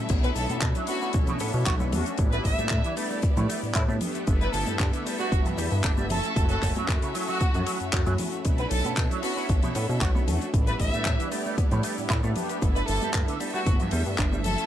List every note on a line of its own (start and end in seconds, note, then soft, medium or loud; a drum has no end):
0.00 2.15 E5 loud
0.09 0.31 B1 loud
0.09 0.85 A3 loud
0.09 0.85 C#4 medium
0.09 0.86 D4 medium
0.09 0.86 E4 loud
0.09 2.17 A4 medium
0.09 2.17 C#5 medium
0.09 kick loud
0.09 closed hi-hat medium
0.09 crash medium
0.09 shaker medium
0.23 0.28 B3 medium
0.23 0.34 B4 medium
0.23 closed hi-hat medium
0.23 shaker soft
0.36 0.47 B1 medium
0.36 0.52 A4 medium
0.36 open hi-hat loud
0.36 shaker medium
0.49 0.60 B2 soft
0.49 0.59 B3 medium
0.49 closed hi-hat medium
0.49 high conga loud
0.49 shaker medium
0.62 0.73 B2 medium
0.62 kick loud
0.62 clap loud
0.62 closed hi-hat medium
0.62 shaker medium
0.75 0.85 F#3 medium
0.75 closed hi-hat medium
0.75 shaker soft
0.87 1.90 A3 medium
0.87 0.99 B3 medium
0.87 1.90 C#4 medium
0.87 1.90 D4 medium
0.87 1.91 E4 loud
0.87 1.04 F#4 medium
0.87 open hi-hat loud
0.87 shaker medium
1.02 1.11 B3 medium
1.02 shaker soft
1.13 1.26 B1 medium
1.13 kick loud
1.13 closed hi-hat medium
1.13 high conga medium
1.13 shaker medium
1.27 1.37 B2 loud
1.27 closed hi-hat medium
1.27 low conga medium
1.27 shaker soft
1.39 1.52 A2 medium
1.39 1.51 B3 medium
1.39 open hi-hat loud
1.39 shaker medium
1.53 1.64 B2 medium
1.53 shaker medium
1.66 1.94 B1 loud
1.66 1.73 F#4 medium
1.66 kick loud
1.66 clap loud
1.66 closed hi-hat medium
1.66 shaker medium
1.80 1.87 B3 medium
1.80 high conga loud
1.80 shaker soft
1.92 2.04 E2 loud
1.92 2.16 A3 medium
1.92 2.16 C#4 medium
1.92 2.16 D4 medium
1.92 2.16 F#4 loud
1.92 open hi-hat loud
1.92 low conga loud
1.92 shaker medium
2.06 closed hi-hat medium
2.06 shaker soft
2.17 2.40 A1 loud
2.17 2.93 G3 loud
2.17 2.94 B3 medium
2.17 3.99 B3 medium
2.17 2.94 D4 medium
2.17 2.95 E4 loud
2.17 3.99 G4 medium
2.17 3.99 D5 loud
2.17 kick loud
2.17 closed hi-hat medium
2.17 shaker medium
2.32 2.36 A3 medium
2.32 2.42 B4 medium
2.32 closed hi-hat medium
2.32 shaker soft
2.45 2.56 A1 medium
2.45 2.85 E5 medium
2.45 kick medium
2.45 open hi-hat loud
2.45 shaker medium
2.58 2.69 A2 soft
2.58 2.68 A3 medium
2.58 closed hi-hat medium
2.58 high conga medium
2.58 shaker medium
2.69 2.82 A2 medium
2.69 kick loud
2.69 clap loud
2.69 closed hi-hat medium
2.69 shaker medium
2.84 2.94 E3 medium
2.84 closed hi-hat medium
2.84 shaker soft
2.96 3.99 G3 medium
2.96 3.07 A3 medium
2.96 3.99 B3 medium
2.96 3.99 D4 medium
2.96 4.00 E4 loud
2.96 open hi-hat loud
2.96 shaker medium
3.10 3.20 A3 medium
3.10 shaker medium
3.22 kick loud
3.22 closed hi-hat medium
3.22 high conga medium
3.22 shaker medium
3.36 3.46 A2 loud
3.36 3.47 A2 medium
3.36 closed hi-hat medium
3.36 low conga medium
3.36 shaker soft
3.49 3.60 A3 medium
3.49 open hi-hat loud
3.49 shaker medium
3.63 3.73 A2 soft
3.63 shaker soft
3.75 3.86 A2 loud
3.75 3.82 E4 medium
3.75 kick loud
3.75 clap loud
3.75 closed hi-hat medium
3.75 shaker medium
3.88 3.99 A2 loud
3.88 3.95 A3 medium
3.88 high conga loud
3.88 shaker soft
4.01 4.24 A3 medium
4.01 4.24 B3 medium
4.01 6.08 B3 medium
4.01 4.25 D4 medium
4.01 4.25 G4 loud
4.01 6.08 A4 medium
4.01 8.41 E5 loud
4.01 open hi-hat loud
4.01 low conga loud
4.01 shaker medium
4.14 closed hi-hat medium
4.14 shaker soft
4.26 4.49 G1 loud
4.26 5.02 A3 medium
4.26 5.03 B3 medium
4.26 5.03 D4 medium
4.26 5.03 E4 loud
4.26 kick loud
4.26 closed hi-hat medium
4.26 shaker medium
4.41 4.45 G3 medium
4.41 4.51 B4 medium
4.41 closed hi-hat soft
4.41 shaker soft
4.53 4.65 G1 medium
4.53 4.69 A4 medium
4.53 open hi-hat loud
4.53 shaker medium
4.66 4.77 G2 soft
4.66 4.77 G3 medium
4.66 closed hi-hat soft
4.66 high conga medium
4.66 shaker medium
4.79 4.91 G2 medium
4.79 kick loud
4.79 clap loud
4.79 closed hi-hat medium
4.79 shaker medium
4.93 5.03 D3 medium
4.93 closed hi-hat medium
4.93 shaker soft
5.05 5.16 G3 medium
5.05 6.07 A3 medium
5.05 6.08 B3 medium
5.05 6.08 D4 medium
5.05 6.08 E4 loud
5.05 open hi-hat loud
5.05 shaker medium
5.19 5.29 G3 medium
5.19 5.34 F#4 loud
5.19 shaker medium
5.32 5.43 G1 medium
5.32 kick loud
5.32 closed hi-hat medium
5.32 high conga medium
5.32 shaker medium
5.45 5.55 G2 loud
5.45 closed hi-hat medium
5.45 low conga medium
5.45 shaker soft
5.58 5.69 E2 medium
5.58 5.68 G3 medium
5.58 open hi-hat loud
5.58 shaker medium
5.71 5.82 G2 medium
5.71 shaker medium
5.84 6.12 G1 loud
5.84 5.91 D4 medium
5.84 kick loud
5.84 clap loud
5.84 closed hi-hat medium
5.84 shaker medium
5.97 6.04 G3 medium
5.97 high conga loud
5.97 shaker soft
6.10 6.21 F#1 loud
6.10 6.33 A3 medium
6.10 8.43 A3 medium
6.10 6.33 C#4 medium
6.10 6.33 E4 medium
6.10 8.43 F#4 medium
6.10 6.47 A4 loud
6.10 6.34 A4 loud
6.10 open hi-hat loud
6.10 low conga loud
6.10 shaker medium
6.23 closed hi-hat medium
6.23 shaker medium
6.35 6.58 F#1 loud
6.35 7.11 A3 loud
6.35 7.11 C#4 medium
6.35 7.12 E4 medium
6.35 7.12 F#4 loud
6.35 kick loud
6.35 closed hi-hat medium
6.35 shaker medium
6.49 6.54 F#3 medium
6.49 6.65 A4 loud
6.49 closed hi-hat medium
6.49 shaker soft
6.62 6.73 F#1 loud
6.62 kick medium
6.62 clap soft
6.62 open hi-hat loud
6.62 shaker medium
6.76 6.85 F#3 medium
6.76 closed hi-hat medium
6.76 high conga medium
6.76 shaker soft
6.88 7.00 F#2 medium
6.88 kick loud
6.88 clap loud
6.88 closed hi-hat medium
6.88 shaker medium
7.02 7.11 C#3 medium
7.02 closed hi-hat medium
7.02 shaker soft
7.14 7.25 F#3 medium
7.14 7.90 A3 medium
7.14 7.90 C#4 medium
7.14 7.91 E4 medium
7.14 7.91 F#4 loud
7.14 open hi-hat loud
7.14 shaker medium
7.28 7.38 F#3 medium
7.28 7.67 F#4 medium
7.28 shaker medium
7.41 kick loud
7.41 closed hi-hat medium
7.41 high conga medium
7.41 shaker medium
7.54 7.64 F#2 loud
7.54 7.64 F#2 medium
7.54 closed hi-hat soft
7.54 low conga medium
7.54 shaker soft
7.67 7.77 F#3 medium
7.67 open hi-hat loud
7.67 shaker medium
7.80 7.91 F#2 soft
7.80 closed hi-hat medium
7.80 shaker medium
7.92 8.04 F#2 loud
7.92 8.16 A3 medium
7.92 8.00 C#4 medium
7.92 8.16 C#4 medium
7.92 8.16 E4 medium
7.92 8.16 F#4 loud
7.92 kick loud
7.92 clap loud
7.92 closed hi-hat medium
7.92 shaker medium
8.06 8.17 F#2 loud
8.06 8.13 F#3 medium
8.06 closed hi-hat medium
8.06 high conga loud
8.06 shaker soft
8.18 8.42 A3 medium
8.18 8.42 C#4 medium
8.18 8.42 E4 medium
8.18 8.43 F#4 medium
8.18 open hi-hat loud
8.18 low conga medium
8.18 shaker medium
8.32 closed hi-hat medium
8.32 shaker soft
8.45 8.66 B1 loud
8.45 9.20 A3 loud
8.45 9.20 C#4 medium
8.45 9.21 D4 medium
8.45 9.21 E4 loud
8.45 10.52 A4 medium
8.45 10.52 C#5 medium
8.45 10.52 E5 medium
8.45 kick loud
8.45 closed hi-hat medium
8.45 shaker medium
8.58 8.62 B3 medium
8.58 8.69 B4 medium
8.58 closed hi-hat medium
8.58 shaker soft
8.71 8.82 B1 medium
8.71 8.87 A4 medium
8.71 open hi-hat loud
8.71 shaker medium
8.84 8.95 B2 soft
8.84 8.94 B3 medium
8.84 closed hi-hat medium
8.84 high conga medium
8.84 shaker medium
8.97 9.08 B2 medium
8.97 kick loud
8.97 clap loud
8.97 closed hi-hat medium
8.97 shaker medium
9.11 9.20 F#3 medium
9.11 closed hi-hat medium
9.11 shaker soft
9.23 10.25 A3 medium
9.23 9.33 B3 medium
9.23 10.25 C#4 medium
9.23 10.26 D4 medium
9.23 10.26 E4 loud
9.23 9.39 F#4 medium
9.23 open hi-hat loud
9.23 shaker medium
9.37 9.46 B3 medium
9.37 shaker medium
9.49 9.60 B1 medium
9.49 kick loud
9.49 closed hi-hat medium
9.49 high conga medium
9.49 shaker medium
9.63 9.72 B2 loud
9.63 closed hi-hat medium
9.63 low conga medium
9.63 shaker soft
9.75 9.86 A2 medium
9.75 9.86 B3 medium
9.75 open hi-hat loud
9.75 shaker medium
9.89 9.99 B2 medium
9.89 shaker medium
10.01 10.29 B1 loud
10.01 10.08 F#4 medium
10.01 kick loud
10.01 clap loud
10.01 closed hi-hat medium
10.01 shaker medium
10.15 10.21 B3 medium
10.15 high conga medium
10.15 shaker soft
10.27 10.39 E2 loud
10.27 10.51 A3 medium
10.27 10.51 C#4 medium
10.27 10.51 D4 medium
10.27 10.51 F#4 loud
10.27 open hi-hat medium
10.27 low conga loud
10.27 shaker medium
10.41 closed hi-hat medium
10.41 shaker soft
10.53 10.75 A1 loud
10.53 11.28 G3 medium
10.53 11.29 B3 medium
10.53 14.41 B3 medium
10.53 11.29 D4 medium
10.53 11.29 E4 loud
10.53 12.35 G4 medium
10.53 12.35 D5 medium
10.53 kick loud
10.53 closed hi-hat medium
10.53 shaker medium
10.67 10.71 A3 medium
10.67 10.77 B4 medium
10.67 closed hi-hat medium
10.67 shaker soft
10.80 10.91 A1 medium
10.80 11.20 E5 medium
10.80 kick medium
10.80 open hi-hat medium
10.80 shaker medium
10.93 11.04 A2 soft
10.93 11.03 A3 medium
10.93 closed hi-hat medium
10.93 high conga medium
10.93 shaker soft
11.05 11.17 A2 medium
11.05 kick loud
11.05 clap loud
11.05 closed hi-hat medium
11.05 shaker medium
11.19 11.29 E3 medium
11.19 closed hi-hat medium
11.19 shaker soft
11.31 12.33 G3 medium
11.31 11.42 A3 medium
11.31 12.34 B3 medium
11.31 12.34 D4 medium
11.31 12.34 E4 loud
11.31 open hi-hat loud
11.31 shaker loud
11.46 11.55 A3 medium
11.46 shaker medium
11.58 kick loud
11.58 closed hi-hat medium
11.58 high conga medium
11.58 shaker medium
11.71 11.81 A2 loud
11.71 11.82 A2 medium
11.71 closed hi-hat medium
11.71 low conga medium
11.71 shaker soft
11.83 11.94 A3 medium
11.83 open hi-hat loud
11.83 shaker medium
11.98 12.08 A2 soft
11.98 shaker medium
12.10 12.21 A2 loud
12.10 12.17 E4 medium
12.10 kick loud
12.10 clap loud
12.10 closed hi-hat medium
12.10 shaker medium
12.23 12.34 A2 loud
12.23 12.30 A3 medium
12.23 high conga loud
12.23 shaker soft
12.35 12.59 A3 medium
12.35 12.59 B3 medium
12.35 12.59 D4 medium
12.35 12.60 G4 loud
12.35 14.43 A4 medium
12.35 14.66 E5 loud
12.35 open hi-hat medium
12.35 low conga medium
12.35 shaker loud
12.49 closed hi-hat medium
12.49 shaker medium
12.61 12.84 G1 loud
12.61 13.37 A3 loud
12.61 13.37 B3 medium
12.61 13.37 D4 medium
12.61 13.38 E4 loud
12.61 kick loud
12.61 closed hi-hat medium
12.61 shaker medium
12.76 12.80 G3 medium
12.76 12.86 B4 medium
12.76 closed hi-hat medium
12.76 shaker soft
12.88 12.99 G1 medium
12.88 13.04 A4 medium
12.88 open hi-hat loud
12.88 shaker medium
13.01 13.11 G3 medium
13.01 closed hi-hat medium
13.01 high conga loud
13.01 shaker medium
13.14 13.25 G2 medium
13.14 kick loud
13.14 clap loud
13.14 closed hi-hat medium
13.14 shaker medium
13.28 13.37 D3 medium
13.28 closed hi-hat medium
13.28 shaker soft
13.39 13.51 G3 medium
13.39 14.42 A3 medium
13.39 14.42 B3 medium
13.39 14.43 D4 medium
13.39 14.43 E4 medium
13.39 open hi-hat loud
13.39 shaker medium
13.54 13.63 G3 medium
13.54 13.69 F#4 medium
13.54 shaker soft
13.66 13.78 G1 medium
13.66 kick loud
13.66 closed hi-hat loud
13.66 high conga medium
13.66 shaker medium
13.80 13.89 G2 loud
13.80 closed hi-hat medium
13.80 low conga medium
13.80 shaker soft
13.91 14.04 E2 medium
13.91 14.03 G3 medium
13.91 open hi-hat loud
13.91 shaker medium
14.05 14.16 G2 medium
14.05 shaker medium
14.18 14.46 G1 medium
14.18 14.26 D4 medium
14.18 kick loud
14.18 clap loud
14.18 closed hi-hat medium
14.18 shaker medium
14.32 14.39 G3 medium
14.32 high conga medium
14.32 shaker soft
14.44 14.56 F#1 loud
14.44 14.66 A3 medium
14.44 14.66 C#4 medium
14.44 14.66 E4 medium
14.44 14.66 F#4 medium
14.44 14.66 A4 loud
14.44 open hi-hat medium
14.44 low conga loud
14.44 shaker medium
14.58 closed hi-hat medium
14.58 shaker medium